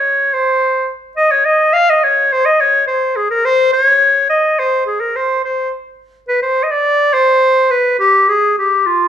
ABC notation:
X:1
M:2/4
L:1/16
Q:1/4=106
K:Cphr
V:1 name="Clarinet"
d2 c4 z2 | e d e2 f e d2 | c e d2 c2 A B | c2 d4 e2 |
c2 A B c2 c2 | [K:Cm] z4 =B c3/2 e/2 d- | d2 c4 =B2 | G2 A2 G2 F2 |]